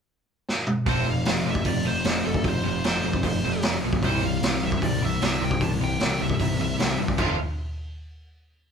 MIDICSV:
0, 0, Header, 1, 5, 480
1, 0, Start_track
1, 0, Key_signature, -1, "major"
1, 0, Tempo, 394477
1, 1061, Time_signature, 4, 2, 24, 8
1, 10607, End_track
2, 0, Start_track
2, 0, Title_t, "Lead electric guitar"
2, 0, Program_c, 0, 29
2, 1083, Note_on_c, 0, 72, 93
2, 1318, Note_off_c, 0, 72, 0
2, 1338, Note_on_c, 0, 77, 90
2, 1812, Note_off_c, 0, 77, 0
2, 1819, Note_on_c, 0, 76, 86
2, 2029, Note_off_c, 0, 76, 0
2, 2029, Note_on_c, 0, 74, 81
2, 2270, Note_off_c, 0, 74, 0
2, 2272, Note_on_c, 0, 72, 85
2, 2758, Note_off_c, 0, 72, 0
2, 2763, Note_on_c, 0, 69, 88
2, 3013, Note_off_c, 0, 69, 0
2, 3013, Note_on_c, 0, 72, 97
2, 3463, Note_off_c, 0, 72, 0
2, 3477, Note_on_c, 0, 72, 71
2, 4380, Note_off_c, 0, 72, 0
2, 4928, Note_on_c, 0, 72, 78
2, 5161, Note_off_c, 0, 72, 0
2, 5175, Note_on_c, 0, 77, 86
2, 5652, Note_off_c, 0, 77, 0
2, 5657, Note_on_c, 0, 76, 78
2, 5881, Note_off_c, 0, 76, 0
2, 5886, Note_on_c, 0, 74, 77
2, 6140, Note_off_c, 0, 74, 0
2, 6140, Note_on_c, 0, 76, 85
2, 6603, Note_off_c, 0, 76, 0
2, 6622, Note_on_c, 0, 79, 104
2, 6828, Note_off_c, 0, 79, 0
2, 6861, Note_on_c, 0, 81, 100
2, 6922, Note_off_c, 0, 81, 0
2, 7106, Note_on_c, 0, 79, 97
2, 7567, Note_on_c, 0, 76, 92
2, 7580, Note_off_c, 0, 79, 0
2, 8038, Note_off_c, 0, 76, 0
2, 8053, Note_on_c, 0, 76, 79
2, 8488, Note_off_c, 0, 76, 0
2, 8746, Note_on_c, 0, 77, 71
2, 8970, Note_off_c, 0, 77, 0
2, 10607, End_track
3, 0, Start_track
3, 0, Title_t, "Distorted electric guitar"
3, 0, Program_c, 1, 30
3, 1056, Note_on_c, 1, 53, 86
3, 1065, Note_on_c, 1, 57, 81
3, 1068, Note_on_c, 1, 60, 93
3, 1283, Note_off_c, 1, 53, 0
3, 1288, Note_off_c, 1, 57, 0
3, 1289, Note_off_c, 1, 60, 0
3, 1298, Note_on_c, 1, 53, 65
3, 1301, Note_on_c, 1, 57, 78
3, 1514, Note_off_c, 1, 53, 0
3, 1516, Note_off_c, 1, 57, 0
3, 1543, Note_on_c, 1, 53, 70
3, 1549, Note_on_c, 1, 57, 67
3, 1756, Note_off_c, 1, 53, 0
3, 1759, Note_off_c, 1, 57, 0
3, 1782, Note_on_c, 1, 53, 59
3, 1782, Note_on_c, 1, 57, 63
3, 1996, Note_off_c, 1, 53, 0
3, 1996, Note_off_c, 1, 57, 0
3, 2010, Note_on_c, 1, 53, 67
3, 2012, Note_on_c, 1, 57, 76
3, 2230, Note_off_c, 1, 53, 0
3, 2231, Note_off_c, 1, 57, 0
3, 2250, Note_on_c, 1, 53, 60
3, 2253, Note_on_c, 1, 57, 78
3, 2470, Note_off_c, 1, 53, 0
3, 2471, Note_off_c, 1, 57, 0
3, 2497, Note_on_c, 1, 53, 67
3, 2499, Note_on_c, 1, 57, 83
3, 2713, Note_off_c, 1, 53, 0
3, 2714, Note_off_c, 1, 57, 0
3, 2742, Note_on_c, 1, 53, 60
3, 2747, Note_on_c, 1, 57, 74
3, 2955, Note_off_c, 1, 53, 0
3, 2958, Note_off_c, 1, 57, 0
3, 2984, Note_on_c, 1, 53, 69
3, 2990, Note_on_c, 1, 57, 74
3, 3197, Note_off_c, 1, 53, 0
3, 3199, Note_off_c, 1, 57, 0
3, 3230, Note_on_c, 1, 53, 65
3, 3232, Note_on_c, 1, 57, 68
3, 3440, Note_off_c, 1, 53, 0
3, 3441, Note_off_c, 1, 57, 0
3, 3458, Note_on_c, 1, 53, 75
3, 3465, Note_on_c, 1, 57, 75
3, 3674, Note_off_c, 1, 53, 0
3, 3677, Note_off_c, 1, 57, 0
3, 3702, Note_on_c, 1, 53, 67
3, 3708, Note_on_c, 1, 57, 75
3, 3916, Note_off_c, 1, 53, 0
3, 3919, Note_off_c, 1, 57, 0
3, 3945, Note_on_c, 1, 53, 68
3, 3954, Note_on_c, 1, 57, 85
3, 4158, Note_off_c, 1, 53, 0
3, 4162, Note_off_c, 1, 57, 0
3, 4188, Note_on_c, 1, 53, 70
3, 4189, Note_on_c, 1, 57, 69
3, 4399, Note_off_c, 1, 53, 0
3, 4400, Note_off_c, 1, 57, 0
3, 4430, Note_on_c, 1, 53, 70
3, 4432, Note_on_c, 1, 57, 78
3, 4641, Note_off_c, 1, 53, 0
3, 4642, Note_off_c, 1, 57, 0
3, 4671, Note_on_c, 1, 53, 61
3, 4675, Note_on_c, 1, 57, 70
3, 4882, Note_off_c, 1, 53, 0
3, 4884, Note_off_c, 1, 57, 0
3, 4909, Note_on_c, 1, 48, 88
3, 4916, Note_on_c, 1, 52, 89
3, 4922, Note_on_c, 1, 55, 95
3, 5131, Note_off_c, 1, 48, 0
3, 5134, Note_off_c, 1, 52, 0
3, 5137, Note_off_c, 1, 55, 0
3, 5149, Note_on_c, 1, 48, 64
3, 5155, Note_on_c, 1, 52, 78
3, 5361, Note_off_c, 1, 48, 0
3, 5364, Note_off_c, 1, 52, 0
3, 5391, Note_on_c, 1, 48, 67
3, 5395, Note_on_c, 1, 52, 75
3, 5603, Note_off_c, 1, 48, 0
3, 5604, Note_off_c, 1, 52, 0
3, 5638, Note_on_c, 1, 48, 71
3, 5644, Note_on_c, 1, 52, 75
3, 5846, Note_off_c, 1, 48, 0
3, 5849, Note_off_c, 1, 52, 0
3, 5874, Note_on_c, 1, 48, 76
3, 5876, Note_on_c, 1, 52, 80
3, 6085, Note_off_c, 1, 48, 0
3, 6086, Note_off_c, 1, 52, 0
3, 6122, Note_on_c, 1, 48, 64
3, 6128, Note_on_c, 1, 52, 69
3, 6329, Note_off_c, 1, 48, 0
3, 6332, Note_off_c, 1, 52, 0
3, 6353, Note_on_c, 1, 48, 81
3, 6353, Note_on_c, 1, 52, 87
3, 6565, Note_off_c, 1, 48, 0
3, 6565, Note_off_c, 1, 52, 0
3, 6591, Note_on_c, 1, 48, 65
3, 6595, Note_on_c, 1, 52, 66
3, 6804, Note_off_c, 1, 48, 0
3, 6806, Note_off_c, 1, 52, 0
3, 6833, Note_on_c, 1, 48, 74
3, 6838, Note_on_c, 1, 52, 90
3, 7045, Note_off_c, 1, 48, 0
3, 7048, Note_off_c, 1, 52, 0
3, 7067, Note_on_c, 1, 48, 68
3, 7073, Note_on_c, 1, 52, 82
3, 7283, Note_off_c, 1, 48, 0
3, 7286, Note_off_c, 1, 52, 0
3, 7305, Note_on_c, 1, 48, 71
3, 7309, Note_on_c, 1, 52, 72
3, 7522, Note_off_c, 1, 48, 0
3, 7524, Note_off_c, 1, 52, 0
3, 7546, Note_on_c, 1, 48, 61
3, 7554, Note_on_c, 1, 52, 75
3, 7763, Note_off_c, 1, 48, 0
3, 7767, Note_off_c, 1, 52, 0
3, 7785, Note_on_c, 1, 48, 72
3, 7792, Note_on_c, 1, 52, 86
3, 8002, Note_off_c, 1, 48, 0
3, 8006, Note_off_c, 1, 52, 0
3, 8039, Note_on_c, 1, 48, 58
3, 8040, Note_on_c, 1, 52, 70
3, 8249, Note_off_c, 1, 48, 0
3, 8250, Note_off_c, 1, 52, 0
3, 8265, Note_on_c, 1, 48, 74
3, 8267, Note_on_c, 1, 52, 84
3, 8482, Note_off_c, 1, 48, 0
3, 8483, Note_off_c, 1, 52, 0
3, 8499, Note_on_c, 1, 48, 59
3, 8509, Note_on_c, 1, 52, 72
3, 8719, Note_off_c, 1, 48, 0
3, 8724, Note_off_c, 1, 52, 0
3, 8733, Note_on_c, 1, 41, 79
3, 8738, Note_on_c, 1, 48, 95
3, 8748, Note_on_c, 1, 53, 92
3, 8751, Note_on_c, 1, 57, 109
3, 8754, Note_on_c, 1, 60, 103
3, 8932, Note_off_c, 1, 41, 0
3, 8935, Note_off_c, 1, 48, 0
3, 8940, Note_off_c, 1, 53, 0
3, 8941, Note_off_c, 1, 57, 0
3, 8943, Note_off_c, 1, 60, 0
3, 10607, End_track
4, 0, Start_track
4, 0, Title_t, "Picked electric bass"
4, 0, Program_c, 2, 34
4, 1048, Note_on_c, 2, 29, 96
4, 1251, Note_off_c, 2, 29, 0
4, 1287, Note_on_c, 2, 29, 83
4, 1490, Note_off_c, 2, 29, 0
4, 1528, Note_on_c, 2, 29, 84
4, 1730, Note_off_c, 2, 29, 0
4, 1771, Note_on_c, 2, 29, 86
4, 1972, Note_off_c, 2, 29, 0
4, 2012, Note_on_c, 2, 29, 82
4, 2212, Note_off_c, 2, 29, 0
4, 2257, Note_on_c, 2, 29, 80
4, 2455, Note_off_c, 2, 29, 0
4, 2492, Note_on_c, 2, 29, 85
4, 2692, Note_off_c, 2, 29, 0
4, 2736, Note_on_c, 2, 29, 77
4, 2934, Note_off_c, 2, 29, 0
4, 2969, Note_on_c, 2, 29, 96
4, 3170, Note_off_c, 2, 29, 0
4, 3215, Note_on_c, 2, 29, 92
4, 3414, Note_off_c, 2, 29, 0
4, 3464, Note_on_c, 2, 29, 85
4, 3659, Note_off_c, 2, 29, 0
4, 3701, Note_on_c, 2, 29, 80
4, 3898, Note_off_c, 2, 29, 0
4, 3935, Note_on_c, 2, 29, 84
4, 4134, Note_off_c, 2, 29, 0
4, 4183, Note_on_c, 2, 29, 88
4, 4380, Note_off_c, 2, 29, 0
4, 4421, Note_on_c, 2, 29, 83
4, 4619, Note_off_c, 2, 29, 0
4, 4665, Note_on_c, 2, 35, 91
4, 4861, Note_off_c, 2, 35, 0
4, 4897, Note_on_c, 2, 36, 97
4, 5097, Note_off_c, 2, 36, 0
4, 5138, Note_on_c, 2, 36, 81
4, 5338, Note_off_c, 2, 36, 0
4, 5376, Note_on_c, 2, 36, 85
4, 5577, Note_off_c, 2, 36, 0
4, 5617, Note_on_c, 2, 36, 82
4, 5818, Note_off_c, 2, 36, 0
4, 5866, Note_on_c, 2, 36, 80
4, 6064, Note_off_c, 2, 36, 0
4, 6105, Note_on_c, 2, 36, 88
4, 6303, Note_off_c, 2, 36, 0
4, 6343, Note_on_c, 2, 36, 78
4, 6542, Note_off_c, 2, 36, 0
4, 6586, Note_on_c, 2, 36, 87
4, 6784, Note_off_c, 2, 36, 0
4, 6826, Note_on_c, 2, 36, 100
4, 7024, Note_off_c, 2, 36, 0
4, 7065, Note_on_c, 2, 36, 84
4, 7264, Note_off_c, 2, 36, 0
4, 7297, Note_on_c, 2, 36, 94
4, 7499, Note_off_c, 2, 36, 0
4, 7532, Note_on_c, 2, 36, 82
4, 7737, Note_off_c, 2, 36, 0
4, 7783, Note_on_c, 2, 36, 77
4, 7983, Note_off_c, 2, 36, 0
4, 8020, Note_on_c, 2, 36, 85
4, 8221, Note_off_c, 2, 36, 0
4, 8255, Note_on_c, 2, 36, 82
4, 8459, Note_off_c, 2, 36, 0
4, 8498, Note_on_c, 2, 43, 86
4, 8700, Note_off_c, 2, 43, 0
4, 8742, Note_on_c, 2, 29, 92
4, 8968, Note_off_c, 2, 29, 0
4, 10607, End_track
5, 0, Start_track
5, 0, Title_t, "Drums"
5, 592, Note_on_c, 9, 38, 68
5, 713, Note_off_c, 9, 38, 0
5, 812, Note_on_c, 9, 47, 85
5, 933, Note_off_c, 9, 47, 0
5, 1048, Note_on_c, 9, 46, 52
5, 1052, Note_on_c, 9, 36, 100
5, 1170, Note_off_c, 9, 46, 0
5, 1173, Note_off_c, 9, 36, 0
5, 1524, Note_on_c, 9, 46, 54
5, 1536, Note_on_c, 9, 38, 101
5, 1646, Note_off_c, 9, 46, 0
5, 1658, Note_off_c, 9, 38, 0
5, 1887, Note_on_c, 9, 36, 76
5, 2003, Note_on_c, 9, 46, 58
5, 2008, Note_off_c, 9, 36, 0
5, 2008, Note_on_c, 9, 36, 88
5, 2125, Note_off_c, 9, 46, 0
5, 2130, Note_off_c, 9, 36, 0
5, 2486, Note_on_c, 9, 46, 57
5, 2498, Note_on_c, 9, 38, 95
5, 2608, Note_off_c, 9, 46, 0
5, 2620, Note_off_c, 9, 38, 0
5, 2853, Note_on_c, 9, 36, 77
5, 2973, Note_off_c, 9, 36, 0
5, 2973, Note_on_c, 9, 36, 91
5, 2974, Note_on_c, 9, 46, 49
5, 3095, Note_off_c, 9, 36, 0
5, 3096, Note_off_c, 9, 46, 0
5, 3454, Note_on_c, 9, 46, 50
5, 3466, Note_on_c, 9, 38, 91
5, 3576, Note_off_c, 9, 46, 0
5, 3588, Note_off_c, 9, 38, 0
5, 3814, Note_on_c, 9, 36, 74
5, 3932, Note_on_c, 9, 46, 52
5, 3933, Note_off_c, 9, 36, 0
5, 3933, Note_on_c, 9, 36, 91
5, 4054, Note_off_c, 9, 46, 0
5, 4055, Note_off_c, 9, 36, 0
5, 4408, Note_on_c, 9, 46, 54
5, 4420, Note_on_c, 9, 38, 113
5, 4530, Note_off_c, 9, 46, 0
5, 4542, Note_off_c, 9, 38, 0
5, 4778, Note_on_c, 9, 36, 84
5, 4899, Note_off_c, 9, 36, 0
5, 4899, Note_on_c, 9, 36, 83
5, 4899, Note_on_c, 9, 46, 49
5, 5021, Note_off_c, 9, 36, 0
5, 5021, Note_off_c, 9, 46, 0
5, 5388, Note_on_c, 9, 46, 59
5, 5400, Note_on_c, 9, 38, 111
5, 5510, Note_off_c, 9, 46, 0
5, 5522, Note_off_c, 9, 38, 0
5, 5745, Note_on_c, 9, 36, 81
5, 5866, Note_off_c, 9, 36, 0
5, 5866, Note_on_c, 9, 36, 92
5, 5870, Note_on_c, 9, 46, 55
5, 5988, Note_off_c, 9, 36, 0
5, 5992, Note_off_c, 9, 46, 0
5, 6347, Note_on_c, 9, 46, 61
5, 6359, Note_on_c, 9, 38, 108
5, 6469, Note_off_c, 9, 46, 0
5, 6481, Note_off_c, 9, 38, 0
5, 6704, Note_on_c, 9, 36, 84
5, 6822, Note_on_c, 9, 46, 57
5, 6825, Note_off_c, 9, 36, 0
5, 6825, Note_on_c, 9, 36, 89
5, 6944, Note_off_c, 9, 46, 0
5, 6947, Note_off_c, 9, 36, 0
5, 7302, Note_on_c, 9, 46, 57
5, 7315, Note_on_c, 9, 38, 96
5, 7424, Note_off_c, 9, 46, 0
5, 7436, Note_off_c, 9, 38, 0
5, 7661, Note_on_c, 9, 36, 79
5, 7783, Note_off_c, 9, 36, 0
5, 7783, Note_on_c, 9, 46, 55
5, 7784, Note_on_c, 9, 36, 93
5, 7905, Note_off_c, 9, 36, 0
5, 7905, Note_off_c, 9, 46, 0
5, 8266, Note_on_c, 9, 46, 52
5, 8278, Note_on_c, 9, 38, 96
5, 8388, Note_off_c, 9, 46, 0
5, 8400, Note_off_c, 9, 38, 0
5, 8620, Note_on_c, 9, 36, 85
5, 8740, Note_off_c, 9, 36, 0
5, 8740, Note_on_c, 9, 36, 100
5, 8740, Note_on_c, 9, 43, 93
5, 8740, Note_on_c, 9, 49, 84
5, 8862, Note_off_c, 9, 36, 0
5, 8862, Note_off_c, 9, 43, 0
5, 8862, Note_off_c, 9, 49, 0
5, 10607, End_track
0, 0, End_of_file